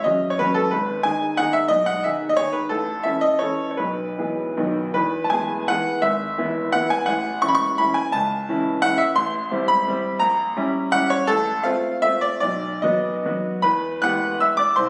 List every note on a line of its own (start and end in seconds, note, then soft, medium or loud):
0.04 0.36 F#3 soft
0.04 0.37 C#4 soft
0.04 0.37 F#4 soft
0.04 0.30 D#5 medium
0.30 0.39 C#5 medium
0.39 0.69 F#3 soft
0.39 0.69 C#4 medium
0.39 0.69 F#4 medium
0.39 0.55 B4 loud
0.54 0.71 A4 medium
0.71 1.04 G#1 medium
0.71 1.04 B4 medium
1.03 1.35 D#3 soft
1.03 1.35 D#4 soft
1.03 1.36 G#4 soft
1.03 1.38 G#5 loud
1.37 1.68 D#3 medium
1.37 1.68 D#4 medium
1.37 1.68 G#4 medium
1.37 1.54 F#5 loud
1.53 1.70 E5 loud
1.68 2.03 B1 medium
1.68 1.86 D#5 loud
1.86 2.04 F#5 loud
2.04 2.36 D#3 soft
2.04 2.36 D#4 soft
2.04 2.36 G#4 medium
2.04 2.30 E5 medium
2.29 2.38 D#5 medium
2.37 2.68 D#3 medium
2.37 2.68 D#4 medium
2.37 2.68 G#4 medium
2.37 2.54 C#5 loud
2.53 2.70 B4 medium
2.69 3.04 A1 medium
2.69 3.04 A4 medium
3.03 3.38 E3 soft
3.03 3.39 C#4 soft
3.03 3.38 A4 soft
3.03 3.23 E5 medium
3.21 3.41 D#5 medium
3.39 3.75 E3 medium
3.39 3.75 C#4 medium
3.39 3.75 A4 medium
3.39 3.69 C#5 medium
3.71 3.79 C#5 medium
3.77 4.17 B1 medium
3.77 4.57 B4 medium
4.18 4.54 E3 soft
4.18 4.54 B3 soft
4.18 4.54 G#4 soft
4.57 4.94 B1 medium
4.57 4.91 D#3 soft
4.57 4.92 B3 soft
4.57 4.92 F#4 soft
4.94 5.31 E2 medium
4.94 5.24 B4 medium
5.24 5.32 A5 medium
5.30 5.66 E3 soft
5.30 5.66 B3 medium
5.30 5.66 G#4 medium
5.30 5.68 G#5 medium
5.68 6.00 E3 medium
5.68 6.01 B3 soft
5.68 6.01 G#4 medium
5.68 6.03 F#5 loud
6.02 6.38 G#1 medium
6.02 6.75 E5 medium
6.38 6.72 E3 medium
6.38 6.72 B3 medium
6.38 6.72 E4 medium
6.72 7.05 E3 medium
6.72 7.05 B3 medium
6.72 7.05 E4 medium
6.72 6.91 F#5 loud
6.90 7.08 G#5 loud
7.06 7.43 A1 medium
7.06 7.43 F#5 medium
7.42 7.76 E3 medium
7.42 7.76 C#4 medium
7.42 7.76 E4 medium
7.42 7.50 C#6 loud
7.48 7.57 B5 medium
7.55 7.78 C#6 loud
7.78 8.10 E3 medium
7.78 8.10 C#4 medium
7.78 8.10 E4 medium
7.78 7.96 B5 loud
7.94 8.12 G#5 loud
8.12 8.48 C#2 medium
8.12 8.84 A5 loud
8.49 8.81 E3 medium
8.49 8.81 C#4 medium
8.49 8.82 E4 medium
8.82 9.14 E3 medium
8.82 9.14 C#4 medium
8.82 9.14 E4 medium
8.82 9.00 F#5 loud
8.98 9.16 E5 loud
9.16 9.50 A1 medium
9.16 9.69 C6 loud
9.51 9.83 G3 medium
9.51 9.83 C4 medium
9.51 9.83 E4 medium
9.68 10.20 B5 loud
9.88 10.18 G3 medium
9.88 10.18 C4 medium
9.88 10.18 E4 medium
10.19 10.55 A#1 medium
10.19 10.93 A#5 loud
10.57 10.90 G3 medium
10.57 10.90 C#4 medium
10.57 10.90 E4 medium
10.92 11.25 G3 medium
10.92 11.25 C#4 medium
10.92 11.25 E4 medium
10.92 11.10 F#5 loud
11.10 11.28 C#5 loud
11.27 11.64 A1 medium
11.27 11.64 A4 loud
11.63 11.99 A3 medium
11.63 11.99 C4 medium
11.63 12.00 F4 medium
11.63 12.02 F5 loud
12.02 12.38 A3 medium
12.02 12.38 C4 medium
12.02 12.39 F4 medium
12.02 12.21 E5 loud
12.21 12.39 D5 loud
12.40 12.82 B1 medium
12.40 12.83 D5 loud
12.82 13.21 F#3 medium
12.82 13.21 B3 medium
12.82 13.21 F#4 medium
12.82 13.44 D#5 medium
13.26 13.60 F#3 medium
13.26 13.60 B3 soft
13.26 13.61 F#4 medium
13.62 14.01 E2 medium
13.62 14.00 B4 medium
13.62 14.02 B5 loud
14.02 14.74 E3 medium
14.02 14.74 B3 medium
14.02 14.74 G4 medium
14.02 14.39 F#5 medium
14.02 14.41 F#6 loud
14.40 14.58 E5 medium
14.40 14.59 E6 medium
14.57 14.75 D5 medium
14.57 14.76 D6 loud
14.76 14.89 C2 medium
14.76 14.89 C5 medium
14.76 14.89 C6 medium